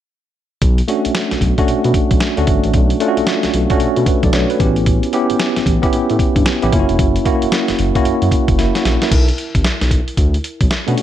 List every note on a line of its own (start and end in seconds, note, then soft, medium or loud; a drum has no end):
0.62 0.82 B1 loud
0.62 kick loud
0.62 closed hi-hat medium
0.78 closed hi-hat medium
0.88 1.37 A3 medium
0.88 1.37 C#4 medium
0.88 1.37 D4 medium
0.88 1.37 F#4 medium
0.88 closed hi-hat medium
1.05 1.09 B1 soft
1.05 closed hi-hat medium
1.15 snare loud
1.15 closed hi-hat medium
1.31 1.36 B1 medium
1.31 snare medium
1.31 closed hi-hat medium
1.41 1.54 B1 medium
1.41 kick medium
1.41 closed hi-hat medium
1.58 2.14 A3 medium
1.58 2.14 C#4 medium
1.58 2.14 D4 medium
1.58 2.14 F#4 loud
1.58 kick medium
1.58 closed hi-hat soft
1.68 1.75 B2 soft
1.68 closed hi-hat medium
1.84 1.92 B2 medium
1.84 closed hi-hat soft
1.94 kick medium
1.94 closed hi-hat medium
2.11 2.19 B1 medium
2.11 kick medium
2.11 closed hi-hat medium
2.21 snare loud
2.21 closed hi-hat medium
2.37 2.45 D2 medium
2.37 2.83 A3 medium
2.37 2.83 C#4 medium
2.37 2.84 D4 medium
2.37 2.84 F#4 medium
2.37 closed hi-hat medium
2.47 2.60 G1 medium
2.47 kick medium
2.47 closed hi-hat medium
2.64 2.72 A1 medium
2.64 closed hi-hat soft
2.74 2.94 B1 loud
2.74 kick loud
2.74 closed hi-hat medium
2.90 closed hi-hat medium
3.00 3.49 A3 medium
3.00 3.50 C#4 medium
3.00 3.50 D4 medium
3.00 3.09 F4 medium
3.00 closed hi-hat medium
3.08 3.53 F#4 loud
3.17 3.21 B1 soft
3.17 closed hi-hat medium
3.27 snare loud
3.27 closed hi-hat medium
3.43 3.48 B1 medium
3.43 snare medium
3.43 closed hi-hat medium
3.54 3.66 B1 medium
3.54 closed hi-hat medium
3.70 4.26 A3 medium
3.70 4.26 C#4 medium
3.70 4.26 D4 medium
3.70 4.06 F#4 loud
3.70 kick medium
3.70 closed hi-hat soft
3.80 3.87 B2 soft
3.80 closed hi-hat medium
3.96 4.04 B2 loud
3.96 closed hi-hat soft
4.06 4.23 F#4 soft
4.06 4.23 B4 medium
4.06 kick medium
4.06 closed hi-hat medium
4.23 4.31 B1 medium
4.23 4.33 A4 medium
4.23 4.33 D5 medium
4.23 kick loud
4.23 closed hi-hat medium
4.33 4.46 B1 loud
4.33 4.49 F#4 medium
4.33 4.49 C#5 medium
4.33 snare loud
4.33 closed hi-hat medium
4.50 4.76 F#4 medium
4.50 4.75 B4 medium
4.50 closed hi-hat medium
4.59 5.00 A1 loud
4.59 5.05 B3 medium
4.59 5.05 C#4 medium
4.59 5.05 E4 medium
4.59 5.05 G4 medium
4.59 kick loud
4.59 closed hi-hat medium
4.76 closed hi-hat soft
4.86 kick loud
4.86 closed hi-hat medium
5.03 closed hi-hat medium
5.13 5.62 B3 medium
5.13 5.62 C#4 medium
5.13 5.62 E4 medium
5.13 5.62 G4 loud
5.13 closed hi-hat medium
5.30 5.34 A1 soft
5.30 closed hi-hat medium
5.40 snare loud
5.40 closed hi-hat medium
5.56 5.60 A1 medium
5.56 snare medium
5.56 closed hi-hat medium
5.66 5.78 A1 medium
5.66 kick medium
5.66 closed hi-hat medium
5.82 6.38 B3 medium
5.82 6.38 C#4 medium
5.82 6.39 E4 medium
5.82 6.39 G4 loud
5.82 kick medium
5.82 closed hi-hat soft
5.93 6.00 A2 soft
5.93 closed hi-hat medium
6.10 6.17 A2 medium
6.10 closed hi-hat soft
6.19 kick loud
6.19 closed hi-hat medium
6.36 6.43 G2 medium
6.36 kick medium
6.36 closed hi-hat medium
6.46 snare loud
6.46 closed hi-hat medium
6.62 6.70 A1 medium
6.62 6.72 B3 medium
6.62 6.71 C#4 medium
6.62 6.72 E4 medium
6.62 6.73 G4 loud
6.62 closed hi-hat medium
6.72 6.85 F#1 loud
6.72 7.17 A#3 medium
6.72 7.17 C#4 medium
6.72 7.18 E4 medium
6.72 6.81 F4 medium
6.72 kick medium
6.72 closed hi-hat medium
6.79 7.21 F#4 medium
6.89 6.97 E1 medium
6.89 closed hi-hat soft
6.99 7.19 F#1 loud
6.99 kick loud
6.99 closed hi-hat medium
7.16 closed hi-hat medium
7.25 7.74 A#3 medium
7.25 7.74 C#4 medium
7.25 7.74 E4 medium
7.25 7.75 F#4 medium
7.25 kick medium
7.25 closed hi-hat medium
7.42 7.47 F#1 soft
7.42 closed hi-hat medium
7.52 snare loud
7.52 closed hi-hat medium
7.68 7.73 F#1 medium
7.68 snare medium
7.68 closed hi-hat medium
7.79 7.91 F#1 loud
7.79 closed hi-hat medium
7.95 8.51 A#3 medium
7.95 8.51 C#4 medium
7.95 8.51 E4 medium
7.95 8.52 F#4 loud
7.95 kick medium
7.95 closed hi-hat medium
8.05 8.12 F#2 soft
8.05 closed hi-hat medium
8.22 8.29 F#2 medium
8.22 closed hi-hat soft
8.31 kick medium
8.31 closed hi-hat medium
8.48 8.56 F#1 medium
8.48 kick loud
8.48 closed hi-hat medium
8.58 8.71 F#1 medium
8.58 8.74 A#3 medium
8.58 8.74 E4 medium
8.58 snare medium
8.58 closed hi-hat medium
8.75 9.00 C#4 medium
8.75 9.00 F#4 medium
8.75 snare medium
8.75 closed hi-hat medium
8.85 8.97 A#1 medium
8.85 snare medium
8.85 closed hi-hat medium
9.02 9.27 E4 medium
9.02 9.27 A#4 medium
9.02 snare medium
9.02 closed hi-hat medium
9.11 9.31 B1 loud
9.11 kick loud
9.11 closed hi-hat medium
9.11 crash medium
9.28 closed hi-hat medium
9.38 closed hi-hat medium
9.55 9.62 A1 medium
9.55 kick loud
9.55 closed hi-hat medium
9.64 9.71 B1 soft
9.64 snare loud
9.64 closed hi-hat medium
9.81 10.01 B1 medium
9.81 snare medium
9.81 closed hi-hat medium
9.91 kick medium
9.91 closed hi-hat medium
10.08 closed hi-hat soft
10.17 10.37 D2 medium
10.17 kick medium
10.17 closed hi-hat medium
10.34 closed hi-hat soft
10.44 closed hi-hat medium
10.61 10.68 B1 medium
10.61 kick loud
10.61 closed hi-hat medium
10.71 snare loud
10.71 closed hi-hat medium
10.87 10.95 B2 loud
10.87 11.02 A3 medium
10.87 11.02 C#4 medium
10.87 11.02 D4 medium
10.87 11.02 F#4 medium
10.87 closed hi-hat medium
10.98 closed hi-hat medium